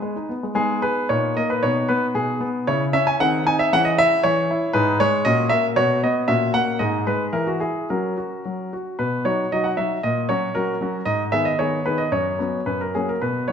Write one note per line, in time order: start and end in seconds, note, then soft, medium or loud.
0.00 0.16 G#3 soft
0.00 0.26 G#4 medium
0.00 0.30 B4 medium
0.16 0.31 D#4 soft
0.29 0.44 B3 soft
0.43 0.53 G#3 soft
0.55 0.82 G#3 medium
0.55 1.06 B3 soft
0.55 1.06 D#4 soft
0.55 0.81 G#4 medium
0.82 1.09 G#4 medium
0.82 1.07 B4 medium
1.09 1.36 A#2 medium
1.09 1.35 A#3 soft
1.09 1.59 D#4 soft
1.09 1.34 C#5 medium
1.36 1.62 A#3 medium
1.36 1.50 D#5 medium
1.50 1.63 B4 medium
1.63 1.89 B2 medium
1.63 2.63 D#4 soft
1.63 1.89 C#5 medium
1.89 2.14 B3 medium
1.89 2.04 B4 medium
2.15 2.40 B2 medium
2.15 2.46 G#4 medium
2.40 2.66 B3 medium
2.67 2.93 C#3 medium
2.67 2.92 C#4 soft
2.67 3.16 E4 soft
2.67 2.83 C#5 medium
2.93 3.19 C#4 medium
2.93 3.06 E5 medium
3.07 3.19 G#5 medium
3.20 3.45 D#3 medium
3.20 3.68 C4 soft
3.20 3.68 G#4 soft
3.20 3.43 F#5 loud
3.47 3.71 D#4 medium
3.47 3.59 G#5 loud
3.59 3.72 E5 medium
3.73 3.97 E3 medium
3.73 4.71 C#4 medium
3.73 4.71 G#4 soft
3.73 3.85 F#5 loud
3.85 3.97 D#5 medium
3.98 4.23 E4 medium
3.98 4.24 E5 loud
4.23 4.48 E3 medium
4.23 4.74 C#5 loud
4.51 4.74 E4 medium
4.73 4.99 G#2 medium
4.73 5.21 D#4 medium
4.73 5.21 G#4 medium
4.73 4.99 B4 loud
5.00 5.24 G#3 medium
5.00 5.25 C#5 loud
5.25 5.50 A#2 medium
5.25 5.73 C#4 soft
5.25 5.73 F#4 soft
5.25 5.48 D#5 loud
5.49 5.76 A#3 medium
5.49 5.65 E5 loud
5.76 6.02 B2 medium
5.76 6.02 B3 soft
5.76 6.25 F#4 medium
5.76 6.00 C#5 loud
6.03 6.28 B3 medium
6.03 6.29 D#5 medium
6.28 6.53 A#2 medium
6.28 6.76 C#4 soft
6.28 6.76 F#4 soft
6.28 6.51 E5 medium
6.54 6.79 A#3 medium
6.54 6.80 F#5 loud
6.79 7.06 G#2 medium
6.79 7.30 D#4 soft
6.79 7.30 G#4 soft
6.79 7.06 D#5 medium
7.07 7.33 G#3 medium
7.07 7.23 B4 medium
7.33 7.60 E3 medium
7.33 7.59 E4 soft
7.33 7.59 G#4 soft
7.33 7.47 A#4 medium
7.47 7.61 F#4 medium
7.60 7.88 E4 soft
7.60 7.88 G#4 medium
7.90 8.16 F#3 medium
7.90 8.96 C#4 soft
7.90 8.16 F#4 soft
7.90 8.73 A#4 medium
8.18 8.44 F#4 soft
8.45 8.72 F#3 soft
8.73 8.99 F#4 soft
8.99 9.25 B2 medium
8.99 9.23 B4 medium
9.25 9.44 F#3 soft
9.25 9.44 D#4 soft
9.25 9.45 F#4 soft
9.25 9.51 C#5 medium
9.52 9.71 F#3 soft
9.52 9.71 D#4 soft
9.52 9.71 F#4 soft
9.52 9.65 D#5 medium
9.64 9.77 F#5 medium
9.77 9.96 F#3 soft
9.77 9.96 D#4 soft
9.77 9.96 F#4 soft
9.77 10.00 E5 medium
10.03 10.28 A#2 medium
10.03 10.26 D#5 medium
10.29 10.47 F#3 soft
10.29 10.48 C#4 soft
10.29 10.48 F#4 soft
10.29 10.55 C#5 medium
10.55 10.74 F#3 soft
10.55 10.74 C#4 soft
10.55 10.74 F#4 medium
10.55 11.02 A#4 medium
10.81 10.99 F#3 soft
10.81 11.00 C#4 soft
10.81 11.00 F#4 medium
11.05 11.32 G#2 medium
11.05 11.22 D#5 medium
11.32 11.51 D#3 soft
11.32 11.52 B3 soft
11.32 11.52 G#4 medium
11.32 11.46 E5 medium
11.45 11.59 D#5 medium
11.59 11.78 D#3 soft
11.59 11.79 B3 soft
11.59 11.79 G#4 soft
11.59 11.86 C#5 medium
11.86 12.06 D#3 soft
11.86 12.06 B3 soft
11.86 12.06 G#4 soft
11.86 11.99 B4 medium
11.98 12.12 D#5 medium
12.12 12.39 F#2 medium
12.12 12.67 C#5 medium
12.39 12.59 F#3 soft
12.39 12.59 B3 soft
12.39 12.59 C#4 soft
12.66 12.93 F#2 medium
12.66 12.80 B4 medium
12.81 12.95 A#4 medium
12.95 13.15 F#3 soft
12.95 13.15 A#3 soft
12.95 13.15 C#4 soft
12.95 13.08 G#4 medium
13.09 13.22 A#4 medium
13.21 13.48 B2 medium
13.21 13.48 B4 medium
13.48 13.52 F#3 soft
13.48 13.52 D#4 soft
13.48 13.52 C#5 medium